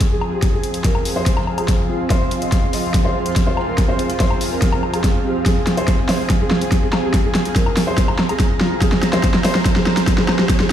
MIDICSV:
0, 0, Header, 1, 6, 480
1, 0, Start_track
1, 0, Key_signature, -4, "minor"
1, 0, Tempo, 419580
1, 486, Time_signature, 4, 2, 24, 8
1, 12269, End_track
2, 0, Start_track
2, 0, Title_t, "Ambient pad"
2, 0, Program_c, 0, 92
2, 0, Note_on_c, 0, 60, 88
2, 0, Note_on_c, 0, 68, 90
2, 0, Note_on_c, 0, 77, 98
2, 306, Note_on_c, 0, 84, 87
2, 7047, Note_on_c, 0, 82, 86
2, 7191, Note_off_c, 0, 84, 0
2, 12269, Note_off_c, 0, 60, 0
2, 12269, Note_off_c, 0, 68, 0
2, 12269, Note_off_c, 0, 77, 0
2, 12269, Note_off_c, 0, 82, 0
2, 12269, End_track
3, 0, Start_track
3, 0, Title_t, "Felt piano"
3, 0, Program_c, 1, 0
3, 126, Note_on_c, 1, 68, 84
3, 279, Note_off_c, 1, 68, 0
3, 365, Note_on_c, 1, 67, 85
3, 519, Note_off_c, 1, 67, 0
3, 606, Note_on_c, 1, 68, 88
3, 836, Note_off_c, 1, 68, 0
3, 966, Note_on_c, 1, 70, 91
3, 1196, Note_off_c, 1, 70, 0
3, 1327, Note_on_c, 1, 72, 94
3, 1633, Note_off_c, 1, 72, 0
3, 1807, Note_on_c, 1, 68, 93
3, 2037, Note_off_c, 1, 68, 0
3, 2168, Note_on_c, 1, 65, 88
3, 2321, Note_off_c, 1, 65, 0
3, 2406, Note_on_c, 1, 72, 96
3, 2636, Note_off_c, 1, 72, 0
3, 2766, Note_on_c, 1, 75, 91
3, 2996, Note_off_c, 1, 75, 0
3, 3126, Note_on_c, 1, 75, 95
3, 3356, Note_off_c, 1, 75, 0
3, 3486, Note_on_c, 1, 72, 94
3, 3792, Note_off_c, 1, 72, 0
3, 3966, Note_on_c, 1, 72, 87
3, 4119, Note_off_c, 1, 72, 0
3, 4205, Note_on_c, 1, 70, 88
3, 4359, Note_off_c, 1, 70, 0
3, 4445, Note_on_c, 1, 72, 90
3, 4676, Note_off_c, 1, 72, 0
3, 4805, Note_on_c, 1, 72, 90
3, 5035, Note_off_c, 1, 72, 0
3, 5165, Note_on_c, 1, 70, 90
3, 5472, Note_off_c, 1, 70, 0
3, 5645, Note_on_c, 1, 68, 94
3, 5876, Note_off_c, 1, 68, 0
3, 6005, Note_on_c, 1, 67, 85
3, 6159, Note_off_c, 1, 67, 0
3, 6244, Note_on_c, 1, 68, 95
3, 6475, Note_off_c, 1, 68, 0
3, 6605, Note_on_c, 1, 72, 93
3, 6836, Note_off_c, 1, 72, 0
3, 6965, Note_on_c, 1, 72, 93
3, 7195, Note_off_c, 1, 72, 0
3, 7326, Note_on_c, 1, 68, 92
3, 7632, Note_off_c, 1, 68, 0
3, 7805, Note_on_c, 1, 68, 85
3, 7959, Note_off_c, 1, 68, 0
3, 8046, Note_on_c, 1, 67, 87
3, 8199, Note_off_c, 1, 67, 0
3, 8285, Note_on_c, 1, 68, 90
3, 8515, Note_off_c, 1, 68, 0
3, 8643, Note_on_c, 1, 70, 92
3, 8875, Note_off_c, 1, 70, 0
3, 9004, Note_on_c, 1, 72, 94
3, 9311, Note_off_c, 1, 72, 0
3, 9485, Note_on_c, 1, 68, 98
3, 9715, Note_off_c, 1, 68, 0
3, 9845, Note_on_c, 1, 65, 88
3, 9999, Note_off_c, 1, 65, 0
3, 10083, Note_on_c, 1, 68, 100
3, 10315, Note_off_c, 1, 68, 0
3, 10444, Note_on_c, 1, 72, 96
3, 10675, Note_off_c, 1, 72, 0
3, 10804, Note_on_c, 1, 72, 99
3, 11035, Note_off_c, 1, 72, 0
3, 11164, Note_on_c, 1, 68, 91
3, 11472, Note_off_c, 1, 68, 0
3, 11644, Note_on_c, 1, 68, 87
3, 11798, Note_off_c, 1, 68, 0
3, 11884, Note_on_c, 1, 67, 88
3, 12038, Note_off_c, 1, 67, 0
3, 12125, Note_on_c, 1, 68, 89
3, 12269, Note_off_c, 1, 68, 0
3, 12269, End_track
4, 0, Start_track
4, 0, Title_t, "Supersaw synth"
4, 0, Program_c, 2, 81
4, 0, Note_on_c, 2, 41, 85
4, 0, Note_on_c, 2, 53, 79
4, 0, Note_on_c, 2, 60, 75
4, 0, Note_on_c, 2, 68, 93
4, 2393, Note_off_c, 2, 68, 0
4, 2405, Note_on_c, 2, 65, 99
4, 6231, Note_off_c, 2, 65, 0
4, 6246, Note_on_c, 2, 68, 96
4, 10072, Note_off_c, 2, 68, 0
4, 10088, Note_on_c, 2, 72, 95
4, 12269, Note_off_c, 2, 41, 0
4, 12269, Note_off_c, 2, 53, 0
4, 12269, Note_off_c, 2, 60, 0
4, 12269, Note_off_c, 2, 72, 0
4, 12269, End_track
5, 0, Start_track
5, 0, Title_t, "Riser"
5, 0, Program_c, 3, 103
5, 6245, Note_on_c, 3, 60, 81
5, 12269, Note_off_c, 3, 60, 0
5, 12269, End_track
6, 0, Start_track
6, 0, Title_t, "Drums"
6, 6, Note_on_c, 9, 38, 49
6, 6, Note_on_c, 9, 42, 77
6, 7, Note_on_c, 9, 36, 101
6, 121, Note_off_c, 9, 36, 0
6, 121, Note_off_c, 9, 38, 0
6, 121, Note_off_c, 9, 42, 0
6, 246, Note_on_c, 9, 77, 57
6, 360, Note_off_c, 9, 77, 0
6, 486, Note_on_c, 9, 38, 51
6, 486, Note_on_c, 9, 42, 83
6, 487, Note_on_c, 9, 36, 96
6, 600, Note_off_c, 9, 38, 0
6, 600, Note_off_c, 9, 42, 0
6, 601, Note_off_c, 9, 36, 0
6, 726, Note_on_c, 9, 42, 54
6, 841, Note_off_c, 9, 42, 0
6, 846, Note_on_c, 9, 42, 54
6, 961, Note_off_c, 9, 42, 0
6, 966, Note_on_c, 9, 38, 54
6, 966, Note_on_c, 9, 42, 78
6, 967, Note_on_c, 9, 36, 95
6, 1080, Note_off_c, 9, 38, 0
6, 1080, Note_off_c, 9, 42, 0
6, 1081, Note_off_c, 9, 36, 0
6, 1086, Note_on_c, 9, 77, 56
6, 1201, Note_off_c, 9, 77, 0
6, 1206, Note_on_c, 9, 46, 89
6, 1320, Note_off_c, 9, 46, 0
6, 1445, Note_on_c, 9, 38, 55
6, 1445, Note_on_c, 9, 42, 83
6, 1447, Note_on_c, 9, 36, 99
6, 1560, Note_off_c, 9, 38, 0
6, 1560, Note_off_c, 9, 42, 0
6, 1561, Note_off_c, 9, 36, 0
6, 1566, Note_on_c, 9, 77, 73
6, 1680, Note_off_c, 9, 77, 0
6, 1686, Note_on_c, 9, 77, 49
6, 1800, Note_off_c, 9, 77, 0
6, 1806, Note_on_c, 9, 42, 52
6, 1806, Note_on_c, 9, 77, 58
6, 1921, Note_off_c, 9, 42, 0
6, 1921, Note_off_c, 9, 77, 0
6, 1926, Note_on_c, 9, 38, 56
6, 1926, Note_on_c, 9, 42, 78
6, 1927, Note_on_c, 9, 36, 95
6, 2040, Note_off_c, 9, 38, 0
6, 2040, Note_off_c, 9, 42, 0
6, 2041, Note_off_c, 9, 36, 0
6, 2406, Note_on_c, 9, 36, 100
6, 2407, Note_on_c, 9, 38, 60
6, 2407, Note_on_c, 9, 42, 78
6, 2521, Note_off_c, 9, 36, 0
6, 2521, Note_off_c, 9, 38, 0
6, 2521, Note_off_c, 9, 42, 0
6, 2647, Note_on_c, 9, 42, 53
6, 2761, Note_off_c, 9, 42, 0
6, 2767, Note_on_c, 9, 42, 53
6, 2882, Note_off_c, 9, 42, 0
6, 2886, Note_on_c, 9, 36, 98
6, 2886, Note_on_c, 9, 38, 57
6, 2886, Note_on_c, 9, 42, 82
6, 3000, Note_off_c, 9, 38, 0
6, 3000, Note_off_c, 9, 42, 0
6, 3001, Note_off_c, 9, 36, 0
6, 3125, Note_on_c, 9, 46, 87
6, 3240, Note_off_c, 9, 46, 0
6, 3366, Note_on_c, 9, 36, 100
6, 3366, Note_on_c, 9, 38, 65
6, 3366, Note_on_c, 9, 42, 80
6, 3480, Note_off_c, 9, 36, 0
6, 3480, Note_off_c, 9, 38, 0
6, 3480, Note_off_c, 9, 42, 0
6, 3727, Note_on_c, 9, 42, 54
6, 3841, Note_off_c, 9, 42, 0
6, 3845, Note_on_c, 9, 38, 58
6, 3845, Note_on_c, 9, 42, 76
6, 3846, Note_on_c, 9, 36, 95
6, 3960, Note_off_c, 9, 36, 0
6, 3960, Note_off_c, 9, 38, 0
6, 3960, Note_off_c, 9, 42, 0
6, 4086, Note_on_c, 9, 77, 63
6, 4201, Note_off_c, 9, 77, 0
6, 4326, Note_on_c, 9, 36, 98
6, 4326, Note_on_c, 9, 38, 64
6, 4326, Note_on_c, 9, 42, 77
6, 4440, Note_off_c, 9, 36, 0
6, 4440, Note_off_c, 9, 38, 0
6, 4440, Note_off_c, 9, 42, 0
6, 4566, Note_on_c, 9, 42, 50
6, 4680, Note_off_c, 9, 42, 0
6, 4686, Note_on_c, 9, 42, 50
6, 4800, Note_off_c, 9, 42, 0
6, 4805, Note_on_c, 9, 38, 65
6, 4805, Note_on_c, 9, 42, 75
6, 4806, Note_on_c, 9, 36, 98
6, 4920, Note_off_c, 9, 36, 0
6, 4920, Note_off_c, 9, 38, 0
6, 4920, Note_off_c, 9, 42, 0
6, 4926, Note_on_c, 9, 77, 60
6, 5040, Note_off_c, 9, 77, 0
6, 5044, Note_on_c, 9, 46, 85
6, 5159, Note_off_c, 9, 46, 0
6, 5285, Note_on_c, 9, 38, 73
6, 5285, Note_on_c, 9, 42, 80
6, 5286, Note_on_c, 9, 36, 97
6, 5400, Note_off_c, 9, 36, 0
6, 5400, Note_off_c, 9, 38, 0
6, 5400, Note_off_c, 9, 42, 0
6, 5406, Note_on_c, 9, 77, 77
6, 5520, Note_off_c, 9, 77, 0
6, 5526, Note_on_c, 9, 77, 52
6, 5641, Note_off_c, 9, 77, 0
6, 5646, Note_on_c, 9, 42, 51
6, 5646, Note_on_c, 9, 77, 63
6, 5761, Note_off_c, 9, 42, 0
6, 5761, Note_off_c, 9, 77, 0
6, 5766, Note_on_c, 9, 36, 97
6, 5766, Note_on_c, 9, 38, 67
6, 5766, Note_on_c, 9, 42, 77
6, 5880, Note_off_c, 9, 36, 0
6, 5881, Note_off_c, 9, 38, 0
6, 5881, Note_off_c, 9, 42, 0
6, 6246, Note_on_c, 9, 36, 98
6, 6246, Note_on_c, 9, 38, 73
6, 6246, Note_on_c, 9, 42, 75
6, 6360, Note_off_c, 9, 36, 0
6, 6361, Note_off_c, 9, 38, 0
6, 6361, Note_off_c, 9, 42, 0
6, 6486, Note_on_c, 9, 38, 72
6, 6486, Note_on_c, 9, 42, 51
6, 6600, Note_off_c, 9, 38, 0
6, 6600, Note_off_c, 9, 42, 0
6, 6606, Note_on_c, 9, 42, 52
6, 6721, Note_off_c, 9, 42, 0
6, 6725, Note_on_c, 9, 38, 74
6, 6725, Note_on_c, 9, 42, 71
6, 6726, Note_on_c, 9, 36, 96
6, 6840, Note_off_c, 9, 36, 0
6, 6840, Note_off_c, 9, 38, 0
6, 6840, Note_off_c, 9, 42, 0
6, 6966, Note_on_c, 9, 38, 77
6, 6966, Note_on_c, 9, 46, 87
6, 7080, Note_off_c, 9, 38, 0
6, 7080, Note_off_c, 9, 46, 0
6, 7206, Note_on_c, 9, 36, 97
6, 7206, Note_on_c, 9, 38, 82
6, 7206, Note_on_c, 9, 42, 74
6, 7320, Note_off_c, 9, 36, 0
6, 7320, Note_off_c, 9, 38, 0
6, 7320, Note_off_c, 9, 42, 0
6, 7446, Note_on_c, 9, 38, 76
6, 7560, Note_off_c, 9, 38, 0
6, 7567, Note_on_c, 9, 42, 47
6, 7682, Note_off_c, 9, 42, 0
6, 7686, Note_on_c, 9, 36, 99
6, 7687, Note_on_c, 9, 38, 75
6, 7687, Note_on_c, 9, 42, 73
6, 7800, Note_off_c, 9, 36, 0
6, 7801, Note_off_c, 9, 38, 0
6, 7801, Note_off_c, 9, 42, 0
6, 7927, Note_on_c, 9, 38, 80
6, 7927, Note_on_c, 9, 77, 65
6, 8042, Note_off_c, 9, 38, 0
6, 8042, Note_off_c, 9, 77, 0
6, 8166, Note_on_c, 9, 36, 101
6, 8167, Note_on_c, 9, 38, 81
6, 8167, Note_on_c, 9, 42, 73
6, 8280, Note_off_c, 9, 36, 0
6, 8281, Note_off_c, 9, 38, 0
6, 8281, Note_off_c, 9, 42, 0
6, 8407, Note_on_c, 9, 38, 83
6, 8407, Note_on_c, 9, 42, 50
6, 8521, Note_off_c, 9, 38, 0
6, 8521, Note_off_c, 9, 42, 0
6, 8528, Note_on_c, 9, 42, 50
6, 8642, Note_off_c, 9, 42, 0
6, 8646, Note_on_c, 9, 36, 101
6, 8647, Note_on_c, 9, 38, 85
6, 8647, Note_on_c, 9, 42, 76
6, 8760, Note_off_c, 9, 36, 0
6, 8762, Note_off_c, 9, 38, 0
6, 8762, Note_off_c, 9, 42, 0
6, 8768, Note_on_c, 9, 77, 62
6, 8882, Note_off_c, 9, 77, 0
6, 8887, Note_on_c, 9, 38, 84
6, 8887, Note_on_c, 9, 46, 88
6, 9001, Note_off_c, 9, 38, 0
6, 9001, Note_off_c, 9, 46, 0
6, 9126, Note_on_c, 9, 36, 102
6, 9127, Note_on_c, 9, 38, 89
6, 9127, Note_on_c, 9, 42, 77
6, 9240, Note_off_c, 9, 36, 0
6, 9241, Note_off_c, 9, 38, 0
6, 9241, Note_off_c, 9, 42, 0
6, 9247, Note_on_c, 9, 77, 81
6, 9361, Note_off_c, 9, 77, 0
6, 9367, Note_on_c, 9, 38, 84
6, 9367, Note_on_c, 9, 77, 56
6, 9481, Note_off_c, 9, 38, 0
6, 9481, Note_off_c, 9, 77, 0
6, 9487, Note_on_c, 9, 42, 50
6, 9487, Note_on_c, 9, 77, 64
6, 9602, Note_off_c, 9, 42, 0
6, 9602, Note_off_c, 9, 77, 0
6, 9606, Note_on_c, 9, 36, 100
6, 9607, Note_on_c, 9, 38, 88
6, 9607, Note_on_c, 9, 42, 71
6, 9720, Note_off_c, 9, 36, 0
6, 9721, Note_off_c, 9, 38, 0
6, 9721, Note_off_c, 9, 42, 0
6, 9847, Note_on_c, 9, 38, 89
6, 9961, Note_off_c, 9, 38, 0
6, 10086, Note_on_c, 9, 36, 105
6, 10087, Note_on_c, 9, 38, 89
6, 10087, Note_on_c, 9, 42, 75
6, 10200, Note_off_c, 9, 36, 0
6, 10201, Note_off_c, 9, 38, 0
6, 10201, Note_off_c, 9, 42, 0
6, 10208, Note_on_c, 9, 38, 83
6, 10322, Note_off_c, 9, 38, 0
6, 10327, Note_on_c, 9, 38, 92
6, 10327, Note_on_c, 9, 42, 52
6, 10442, Note_off_c, 9, 38, 0
6, 10442, Note_off_c, 9, 42, 0
6, 10447, Note_on_c, 9, 38, 83
6, 10447, Note_on_c, 9, 42, 50
6, 10561, Note_off_c, 9, 38, 0
6, 10561, Note_off_c, 9, 42, 0
6, 10566, Note_on_c, 9, 36, 97
6, 10566, Note_on_c, 9, 38, 90
6, 10566, Note_on_c, 9, 42, 76
6, 10680, Note_off_c, 9, 36, 0
6, 10680, Note_off_c, 9, 38, 0
6, 10680, Note_off_c, 9, 42, 0
6, 10687, Note_on_c, 9, 38, 82
6, 10801, Note_off_c, 9, 38, 0
6, 10806, Note_on_c, 9, 38, 93
6, 10806, Note_on_c, 9, 46, 95
6, 10920, Note_off_c, 9, 38, 0
6, 10920, Note_off_c, 9, 46, 0
6, 10926, Note_on_c, 9, 38, 87
6, 11041, Note_off_c, 9, 38, 0
6, 11045, Note_on_c, 9, 36, 103
6, 11047, Note_on_c, 9, 38, 98
6, 11047, Note_on_c, 9, 42, 79
6, 11160, Note_off_c, 9, 36, 0
6, 11161, Note_off_c, 9, 38, 0
6, 11161, Note_off_c, 9, 42, 0
6, 11167, Note_on_c, 9, 38, 87
6, 11281, Note_off_c, 9, 38, 0
6, 11287, Note_on_c, 9, 38, 94
6, 11401, Note_off_c, 9, 38, 0
6, 11407, Note_on_c, 9, 38, 86
6, 11407, Note_on_c, 9, 42, 53
6, 11522, Note_off_c, 9, 38, 0
6, 11522, Note_off_c, 9, 42, 0
6, 11525, Note_on_c, 9, 36, 100
6, 11527, Note_on_c, 9, 38, 100
6, 11527, Note_on_c, 9, 42, 78
6, 11640, Note_off_c, 9, 36, 0
6, 11641, Note_off_c, 9, 38, 0
6, 11641, Note_off_c, 9, 42, 0
6, 11647, Note_on_c, 9, 38, 89
6, 11761, Note_off_c, 9, 38, 0
6, 11767, Note_on_c, 9, 38, 103
6, 11767, Note_on_c, 9, 77, 64
6, 11881, Note_off_c, 9, 38, 0
6, 11881, Note_off_c, 9, 77, 0
6, 11888, Note_on_c, 9, 38, 90
6, 12002, Note_off_c, 9, 38, 0
6, 12006, Note_on_c, 9, 36, 100
6, 12006, Note_on_c, 9, 38, 100
6, 12006, Note_on_c, 9, 42, 82
6, 12120, Note_off_c, 9, 36, 0
6, 12121, Note_off_c, 9, 38, 0
6, 12121, Note_off_c, 9, 42, 0
6, 12127, Note_on_c, 9, 38, 90
6, 12241, Note_off_c, 9, 38, 0
6, 12269, End_track
0, 0, End_of_file